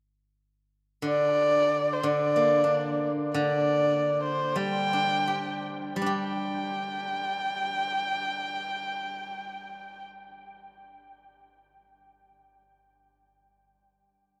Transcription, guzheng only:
1.02 D3
2.03 D3
2.36 A#3
2.64 D4
3.34 D3
4.56 G3
4.93 D4
5.28 G4
5.96 G3
6.02 D4
6.06 G4

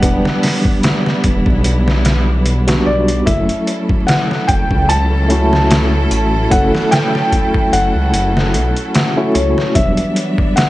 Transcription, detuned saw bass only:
0.03 E1
1.24 E1
1.46 B1
2.87 B1
3.27 F#1
4.49 F#1
4.71 C#2
6.11 A1
6.52 F#1
7.73 F#1
7.95 C#2
8.14 F#1
8.55 B1
9.35 C#2
9.76 E1

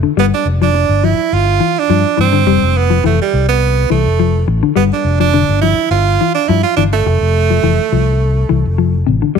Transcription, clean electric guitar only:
0.03 D3
0.17 G3
0.62 F3
0.75 muted clean electric guitar stroke
1.04 F3
1.60 E3
1.90 F3
2.17 E3
2.32 D3
2.47 G3
2.90 F3
3.04 E3
3.90 E3
4.20 F3
4.48 muted clean electric guitar stroke
4.63 D3
4.76 G3
5.20 F3
5.34 D3
5.63 F3
6.21 E3
6.49 F3
6.78 E3
6.93 muted clean electric guitar stroke
7.06 muted clean electric guitar stroke
7.50 F3
7.63 E3
7.92 F3
8.49 E3
8.78 F3
9.07 C3
9.22 D3
9.35 G3

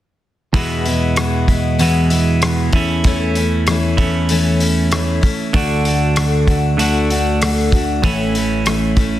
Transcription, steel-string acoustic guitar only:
0.54 E2 B2 E3 G#3 B3 E4
0.85 E3 G#3 B3 E4
1.17 E3 G#3 B3 E4
1.48 E3 G#3 B3 E4
1.79 E2 B2 E3 G#3 B3 E4
2.10 E3 G#3 B3 E4
2.43 E3 G#3 B3 E4
2.73 A3 C#4 E4
3.05 E3 A3 C#4 E4
3.36 A3 C#4 E4
3.67 E3 A3 C#4 E4
3.98 A3 C#4 E4
4.30 E3 A3 C#4 E4
4.59 A3 C#4 E4
4.92 E3 A3 C#4 E4
5.21 A3 C#4 E4
5.53 D3 A3 D4 F#4
5.85 A3 D4 F#4
6.16 D3 A3 D4 F#4
6.48 A3 D4 F#4
6.79 D3 A3 D4 F#4
7.11 A3 D4 F#4
7.41 D3 A3 D4 F#4
7.72 A3 D4 F#4
8.03 A2 E3 A3 C#4 E4
8.35 A3 C#4 E4
8.65 E3 A3 C#4 E4
8.97 A3 C#4 E4

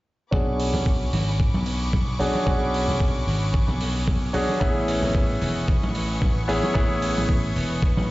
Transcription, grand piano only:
0.31 C#4 D4 F#4 G#4
2.19 C#4 D4 F#4 G#4
2.46 C#4 D4 F#4 G#4
4.33 C#4 D4 F#4 G#4
4.60 B3 C#4 E4 G#4
6.48 B3 C#4 E4 G#4
6.74 B3 C#4 E4 G#4

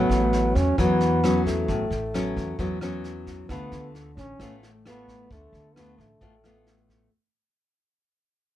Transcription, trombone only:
Already playing: B3
0.56 C#4
0.78 B3
1.46 A3
3.50 B3
4.17 C#4
4.88 B3
5.32 A3
5.75 B3
6.00 A3

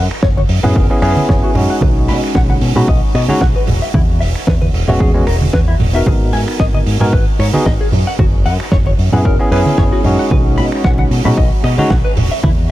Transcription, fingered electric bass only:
0.11 muted fingered electric bass stroke
0.23 F#1
0.49 F#2
0.63 F#2
0.76 F#1
1.02 F#2
1.16 muted fingered electric bass stroke
1.29 F#1
1.55 F#2
1.82 B1
2.08 B2
2.35 B1
2.61 B2
2.76 B2
2.88 B1
3.15 B2
3.29 muted fingered electric bass stroke
3.41 B1
3.68 E1
3.94 E2
4.20 E1
4.35 muted fingered electric bass stroke
4.47 E2
4.73 E1
4.88 E1
5.00 E2
5.27 E1
5.53 E2
5.80 E1
6.07 G#1
6.33 G#2
6.60 G#1
6.86 G#2
7.01 G#2
7.13 G#1
7.39 G#2
7.54 muted fingered electric bass stroke
7.66 G#1
7.93 F#2
8.19 F#1
8.45 F#2
8.60 muted fingered electric bass stroke
8.72 F#1
8.98 F#2
9.13 F#2
9.25 F#1
9.51 F#2
9.66 muted fingered electric bass stroke
9.78 F#1
10.04 F#2
10.31 B1
10.58 B2
10.85 B1
11.11 B2
11.25 B2
11.37 B1
11.64 B2
11.78 muted fingered electric bass stroke
11.90 B1
12.17 E1
12.44 E2

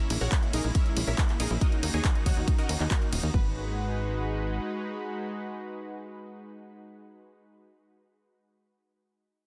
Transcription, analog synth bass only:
0.10 A#1
0.21 A#1
0.54 A#1
0.64 A#1
0.97 A#1
1.07 A#1
1.40 A#1
1.51 A#1
1.83 D#2
1.94 D#2
2.26 D#2
2.37 D#2
2.69 D#2
2.80 D#2
3.13 D#1
3.23 D#2
3.34 G#1

